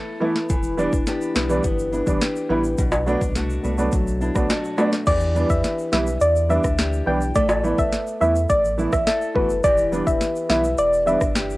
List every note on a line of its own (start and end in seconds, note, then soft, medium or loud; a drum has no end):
0.00 0.49 A3 medium
0.00 0.21 B3 medium
0.00 0.78 E4 medium
0.00 0.56 A4 medium
0.20 0.32 E3 medium
0.20 0.32 A3 medium
0.20 1.07 B3 medium
0.20 0.33 B3 medium
0.20 0.33 E4 loud
0.36 snare medium
0.49 0.87 E1 loud
0.49 2.78 E3 medium
0.49 kick loud
0.49 closed hi-hat medium
0.49 shaker medium
0.63 shaker medium
0.77 0.89 E3 medium
0.77 0.90 G3 medium
0.77 0.90 B3 medium
0.77 1.07 D4 medium
0.77 0.90 D4 loud
0.77 shaker medium
0.93 1.05 E1 loud
0.93 kick medium
0.93 shaker medium
1.07 1.35 B3 medium
1.07 1.92 D4 medium
1.07 2.20 G4 medium
1.07 snare medium
1.07 closed hi-hat medium
1.07 shaker medium
1.21 shaker medium
1.35 1.61 B1 medium
1.35 1.41 B3 medium
1.35 1.63 B3 medium
1.35 1.42 E4 medium
1.35 snare loud
1.35 shaker medium
1.49 1.61 E3 medium
1.49 1.61 G3 medium
1.49 1.61 B3 medium
1.49 1.62 D4 medium
1.49 shaker medium
1.64 2.02 G1 loud
1.64 2.49 B3 medium
1.64 kick medium
1.64 closed hi-hat medium
1.64 shaker medium
1.79 shaker medium
1.92 1.98 B3 medium
1.92 3.07 D4 medium
1.92 1.99 E4 medium
1.92 shaker soft
2.06 2.20 E1 medium
2.06 2.18 E3 medium
2.06 2.18 G3 medium
2.06 2.19 B3 medium
2.06 2.19 D4 medium
2.06 kick medium
2.06 shaker medium
2.21 2.84 G4 medium
2.21 snare loud
2.21 closed hi-hat medium
2.21 shaker medium
2.36 shaker soft
2.49 2.75 A1 medium
2.49 2.61 E3 medium
2.49 2.61 G3 medium
2.49 3.35 B3 medium
2.49 2.61 B3 medium
2.49 2.62 E4 loud
2.64 shaker medium
2.78 3.16 B1 loud
2.78 5.07 B2 medium
2.78 kick loud
2.78 closed hi-hat medium
2.78 shaker medium
2.92 high timbale medium
2.92 shaker medium
3.06 3.18 F#3 medium
3.06 3.18 A3 medium
3.06 3.19 B3 medium
3.06 3.36 D4 medium
3.06 3.19 D4 loud
3.06 shaker medium
3.21 3.59 C2 medium
3.21 kick medium
3.21 shaker medium
3.35 3.63 A3 medium
3.35 4.21 D4 medium
3.35 4.49 F#4 medium
3.35 snare medium
3.35 closed hi-hat medium
3.35 shaker medium
3.50 shaker medium
3.63 3.89 C2 medium
3.63 4.77 A3 medium
3.63 3.69 B3 medium
3.63 3.70 D4 medium
3.63 shaker medium
3.77 3.89 F#3 medium
3.77 3.90 A3 medium
3.77 3.90 B3 medium
3.77 3.90 D4 medium
3.77 shaker medium
3.92 4.30 B1 loud
3.92 5.06 F#3 medium
3.92 kick loud
3.92 closed hi-hat medium
3.92 shaker medium
4.07 shaker medium
4.21 4.27 B3 medium
4.21 6.49 D4 medium
4.21 4.27 E4 medium
4.21 shaker soft
4.35 4.48 B1 loud
4.35 4.47 F#3 medium
4.35 4.47 A3 medium
4.35 4.47 B3 medium
4.35 4.47 D4 medium
4.35 kick medium
4.35 cross-stick medium
4.35 shaker medium
4.50 5.07 F#4 medium
4.50 snare loud
4.50 closed hi-hat medium
4.50 high timbale medium
4.50 shaker medium
4.64 shaker soft
4.77 4.89 F#3 medium
4.77 4.90 A3 medium
4.77 5.13 A3 medium
4.77 4.90 B3 medium
4.77 4.90 D4 loud
4.77 high timbale medium
4.77 shaker medium
4.93 snare medium
4.93 shaker medium
5.06 5.45 E2 loud
5.06 7.35 E3 medium
5.06 6.77 G4 medium
5.06 5.18 D5 loud
5.06 kick loud
5.06 closed hi-hat medium
5.06 crash loud
5.06 shaker medium
5.20 shaker medium
5.35 5.47 E3 medium
5.35 5.47 G3 medium
5.35 7.63 B3 medium
5.35 5.47 B3 medium
5.35 5.47 D4 medium
5.35 shaker medium
5.50 5.62 E2 loud
5.50 5.73 E5 medium
5.50 kick medium
5.50 shaker medium
5.64 snare medium
5.64 closed hi-hat medium
5.64 shaker medium
5.79 shaker medium
5.92 6.18 B1 medium
5.92 6.04 E3 medium
5.92 6.04 G3 medium
5.92 6.04 B3 medium
5.92 6.04 E4 medium
5.92 6.16 E5 medium
5.92 snare loud
5.92 shaker medium
6.07 shaker medium
6.21 6.59 E2 loud
6.21 6.33 D5 medium
6.21 closed hi-hat medium
6.21 shaker medium
6.36 shaker medium
6.49 6.61 E3 medium
6.49 6.61 G3 medium
6.49 6.61 B3 medium
6.49 7.41 D4 medium
6.49 6.62 D4 medium
6.49 6.61 E5 medium
6.49 shaker soft
6.64 7.02 D2 loud
6.64 kick medium
6.64 cross-stick medium
6.64 shaker medium
6.78 7.35 G4 medium
6.78 snare loud
6.78 closed hi-hat medium
6.78 shaker medium
6.93 shaker soft
7.06 7.32 B1 medium
7.06 7.18 E3 medium
7.06 7.18 G3 medium
7.06 7.18 B3 medium
7.06 7.19 D4 medium
7.06 7.18 G5 medium
7.21 shaker medium
7.35 7.73 A1 loud
7.35 9.64 A3 medium
7.35 9.06 A4 medium
7.35 7.47 D5 loud
7.35 kick loud
7.35 closed hi-hat medium
7.35 shaker medium
7.49 high timbale medium
7.49 shaker medium
7.63 7.75 E3 medium
7.63 7.75 A3 medium
7.63 9.92 B3 medium
7.63 7.76 B3 medium
7.63 7.76 E4 medium
7.63 shaker medium
7.78 7.91 A1 loud
7.78 8.01 E5 medium
7.78 kick medium
7.78 shaker medium
7.93 snare medium
7.93 closed hi-hat medium
7.93 shaker medium
8.07 shaker medium
8.21 8.46 E2 medium
8.21 8.32 E3 medium
8.21 8.33 A3 medium
8.21 8.33 B3 medium
8.21 8.33 E4 medium
8.21 8.44 E5 medium
8.21 shaker medium
8.36 shaker medium
8.49 8.87 A1 loud
8.49 8.61 D5 medium
8.49 kick medium
8.49 closed hi-hat medium
8.49 shaker medium
8.65 shaker medium
8.78 8.89 E3 medium
8.78 8.90 A3 medium
8.78 8.90 B3 medium
8.78 11.06 E4 medium
8.78 8.90 E4 medium
8.78 shaker soft
8.93 9.05 A1 medium
8.93 9.04 E5 medium
8.93 kick medium
8.93 cross-stick loud
8.93 shaker medium
9.07 9.64 A4 medium
9.07 9.18 E5 medium
9.07 snare loud
9.07 closed hi-hat medium
9.07 shaker medium
9.22 shaker soft
9.35 9.61 F#1 loud
9.35 9.47 E3 medium
9.35 9.47 A3 medium
9.35 9.47 B3 medium
9.35 9.47 F#4 medium
9.35 9.47 B4 medium
9.35 kick loud
9.50 shaker medium
9.64 10.02 E1 loud
9.64 11.57 E3 medium
9.64 11.34 G4 medium
9.64 9.75 D5 loud
9.64 kick loud
9.64 closed hi-hat medium
9.64 shaker medium
9.78 shaker medium
9.92 10.04 E3 medium
9.92 10.04 G3 medium
9.92 11.57 B3 medium
9.92 10.04 B3 medium
9.92 10.04 D4 medium
9.92 shaker medium
10.07 10.19 E1 loud
10.07 10.30 E5 medium
10.07 kick medium
10.07 shaker medium
10.21 snare medium
10.21 closed hi-hat medium
10.21 shaker medium
10.36 shaker medium
10.49 10.75 B1 medium
10.49 10.61 E3 medium
10.49 10.61 G3 medium
10.49 10.61 B3 medium
10.49 10.62 E4 medium
10.49 10.73 E5 medium
10.49 snare loud
10.49 shaker medium
10.64 shaker medium
10.78 11.16 E1 loud
10.78 10.90 D5 medium
10.78 closed hi-hat medium
10.78 shaker medium
10.93 shaker medium
11.06 11.18 E3 medium
11.06 11.18 G3 medium
11.06 11.18 B3 medium
11.06 11.57 D4 medium
11.06 11.19 D4 medium
11.06 11.18 E5 medium
11.06 shaker soft
11.21 11.57 G1 medium
11.21 kick medium
11.21 cross-stick medium
11.21 shaker medium
11.35 11.57 G4 medium
11.35 snare loud
11.35 closed hi-hat medium
11.35 shaker medium
11.50 shaker soft